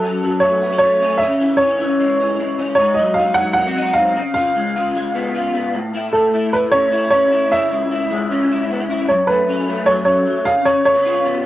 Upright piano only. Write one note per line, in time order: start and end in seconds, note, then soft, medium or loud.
0.00 0.43 A4 medium
0.40 0.77 C#5 medium
0.78 1.21 C#5 loud
1.18 1.56 E5 medium
1.57 2.53 C#5 medium
2.75 2.97 C#5 medium
2.94 3.17 D#5 medium
3.14 3.36 F5 medium
3.34 3.52 F#5 loud
3.53 3.92 F#5 loud
3.93 4.33 F5 loud
4.34 4.90 F5 loud
6.13 6.54 A4 medium
6.53 6.58 B4 medium
6.72 7.09 C#5 loud
7.10 7.52 C#5 loud
7.52 8.66 E5 loud
9.09 9.29 C#5 medium
9.27 9.89 B4 medium
9.86 9.91 C#5 loud
10.05 10.47 C#5 medium
10.45 10.66 F5 loud
10.65 10.84 C#5 medium
10.85 11.22 C#5 loud